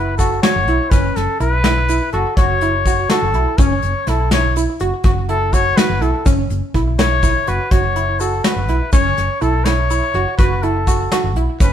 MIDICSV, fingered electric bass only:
0, 0, Header, 1, 2, 480
1, 0, Start_track
1, 0, Key_signature, 3, "minor"
1, 0, Tempo, 485830
1, 910, Time_signature, 11, 3, 24, 8
1, 11588, End_track
2, 0, Start_track
2, 0, Title_t, "Fingered electric bass"
2, 0, Program_c, 0, 33
2, 0, Note_on_c, 0, 30, 68
2, 379, Note_off_c, 0, 30, 0
2, 552, Note_on_c, 0, 30, 73
2, 668, Note_off_c, 0, 30, 0
2, 668, Note_on_c, 0, 35, 76
2, 765, Note_off_c, 0, 35, 0
2, 904, Note_on_c, 0, 30, 80
2, 1098, Note_off_c, 0, 30, 0
2, 1149, Note_on_c, 0, 30, 75
2, 1245, Note_off_c, 0, 30, 0
2, 1384, Note_on_c, 0, 35, 80
2, 1960, Note_off_c, 0, 35, 0
2, 2106, Note_on_c, 0, 30, 77
2, 2202, Note_off_c, 0, 30, 0
2, 2339, Note_on_c, 0, 30, 68
2, 3012, Note_off_c, 0, 30, 0
2, 3186, Note_on_c, 0, 30, 72
2, 3310, Note_off_c, 0, 30, 0
2, 3310, Note_on_c, 0, 35, 76
2, 3404, Note_off_c, 0, 35, 0
2, 3540, Note_on_c, 0, 30, 88
2, 3734, Note_off_c, 0, 30, 0
2, 3783, Note_on_c, 0, 30, 77
2, 3881, Note_off_c, 0, 30, 0
2, 4022, Note_on_c, 0, 35, 77
2, 4598, Note_off_c, 0, 35, 0
2, 4747, Note_on_c, 0, 30, 78
2, 4843, Note_off_c, 0, 30, 0
2, 4981, Note_on_c, 0, 30, 80
2, 5653, Note_off_c, 0, 30, 0
2, 5824, Note_on_c, 0, 30, 77
2, 5940, Note_off_c, 0, 30, 0
2, 5940, Note_on_c, 0, 35, 73
2, 6038, Note_off_c, 0, 35, 0
2, 6184, Note_on_c, 0, 30, 90
2, 6377, Note_off_c, 0, 30, 0
2, 6425, Note_on_c, 0, 30, 83
2, 6522, Note_off_c, 0, 30, 0
2, 6663, Note_on_c, 0, 35, 86
2, 7239, Note_off_c, 0, 35, 0
2, 7389, Note_on_c, 0, 30, 83
2, 7484, Note_off_c, 0, 30, 0
2, 7621, Note_on_c, 0, 30, 72
2, 8293, Note_off_c, 0, 30, 0
2, 8458, Note_on_c, 0, 30, 76
2, 8586, Note_off_c, 0, 30, 0
2, 8586, Note_on_c, 0, 35, 77
2, 8682, Note_off_c, 0, 35, 0
2, 8817, Note_on_c, 0, 30, 85
2, 9012, Note_off_c, 0, 30, 0
2, 9067, Note_on_c, 0, 30, 74
2, 9163, Note_off_c, 0, 30, 0
2, 9304, Note_on_c, 0, 35, 79
2, 9880, Note_off_c, 0, 35, 0
2, 10018, Note_on_c, 0, 30, 74
2, 10118, Note_off_c, 0, 30, 0
2, 10261, Note_on_c, 0, 30, 73
2, 10933, Note_off_c, 0, 30, 0
2, 11105, Note_on_c, 0, 30, 73
2, 11220, Note_off_c, 0, 30, 0
2, 11220, Note_on_c, 0, 35, 75
2, 11319, Note_off_c, 0, 35, 0
2, 11463, Note_on_c, 0, 30, 88
2, 11588, Note_off_c, 0, 30, 0
2, 11588, End_track
0, 0, End_of_file